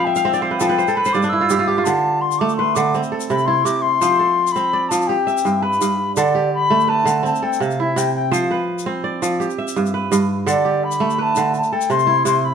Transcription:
Already playing: F3 C4 A4 F5 G5
0.04 E5 G5
0.16 F5, shaker
0.25 C4 E5
0.33 D5, shaker
0.40 C5 F5
0.51 B4
0.58 F3 A4 G5, shaker
0.69 B4
0.78 C5, shaker
0.88 A4, shaker
0.95 B4 B5
1.05 C5, shaker
1.12 G2 D5 D6, shaker
1.22 D4, shaker
1.29 E6
1.33 E4
1.41 F4
1.50 G2 G4, shaker
1.59 F4
1.67 G4 D6
1.78 F4
1.84 D3 A5, shaker
2.21 C6
2.31 shaker
2.39 A3 D6
2.49 shaker
2.56 B4 C6
2.75 D3 D6, shaker
2.94 C4, shaker
3.03 shaker
3.12 A4
3.20 shaker
3.30 C3 B5, shaker
3.38 shaker
3.45 E4 C6
3.65 C3 D6, shaker
3.81 C6
4.01 F3 C5, shaker
4.19 A4
4.47 shaker
4.51 B5
4.56 C4, shaker
4.73 D5
4.88 F3 A5, shaker
5.02 shaker
5.07 G4 G5
5.27 E5, shaker
5.37 shaker
5.45 G2, shaker
5.62 B4 B5
5.73 shaker
5.81 G2, shaker
6.15 D3 A4 D5, shaker
6.35 G4
6.53 B5
6.70 A3
6.80 shaker
6.88 B4 A5
7.05 D3, shaker
7.23 C4 A5, shaker
7.35 shaker
7.42 A4 G5
7.53 shaker
7.60 C3 F5, shaker
7.71 shaker
7.80 E4 E5
7.96 C3 G5, shaker
8.14 G5
8.31 F3 C5 F5, shaker
8.51 B4
8.79 shaker
8.86 C4
9.04 D5
9.22 F3, shaker
9.40 G4, shaker
9.50 shaker
9.58 E5
9.68 shaker
9.76 G2, shaker
9.86 shaker
9.94 B4
10.12 G2, shaker
10.46 D3 A4 D5, shaker
10.65 G4
10.83 B5
10.91 shaker
11.00 A3
11.10 shaker
11.18 B4 A5
11.36 D3, shaker
11.54 A5, shaker
11.63 shaker
11.72 A4 G5
11.81 shaker
11.90 C3 C6, shaker
11.99 shaker
12.07 E4
12.25 C3 C6, shaker
12.39 C6
12.44 B5

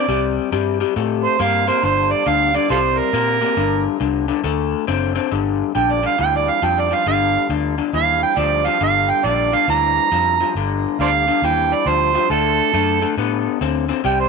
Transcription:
Already playing: D5
0.08 C2 C3 G3
0.52 G2 C3 G3
0.80 C3 G3
0.96 A2 C3 A3
1.25 C5
1.39 G2 C3 A#3 F5
1.67 C3 A#3 C5
1.82 G1 G2 D3 C5
2.11 D5
2.26 D2 G2 D3 F5
2.54 G2 D3 D5
2.69 C2 C3 G3 F4 A4 C5
2.99 A#4
3.13 A#2 C3 A#3
3.41 C3 A#3
3.56 G1 G2 D3
4.00 C2 G2 D3
4.28 G2 D3
4.44 D2 D3 A3
4.87 F#1 D3 C4
5.15 D3 C4
5.31 G1 G2 D3
5.75 A#1 G2 D3 G5
5.91 D5
6.03 G2 D3 F5
6.18 D2 G2 E3 G5
6.36 D5
6.49 F5
6.62 F2 G2 F3 G5
6.79 D5
6.90 G2 F3 F5
7.06 G1 G2 D3 F5
7.49 D2 G2 D3
7.78 G2 D3
7.93 D#2 G2 E3 F5
8.23 G5
8.37 D2 G2 F3 D5
8.65 G2 F3 F5
8.81 G1 G2 D3 F5
9.10 G5
9.24 A#1 G2 D3 D5
9.52 G2 D3 F5
9.68 D2 G2 E3 A#5
10.12 F2 G2 F3
10.40 G2 F3
10.55 G1 G2 D3
10.99 D2 G2 D3 C5 D5 F5
11.28 G2 D3
11.42 D#2 G2 E3 G5
11.74 D5
11.86 D2 G2 F3 C5
12.15 G2 F3
12.30 D2 D3 A3 A4
12.73 F#2 D3 A3
13.02 D3 A3
13.17 A2 D3 B3
13.61 D2 D3 C4
13.89 D3 C4
14.04 C2 C3 G3 G5
14.20 C5

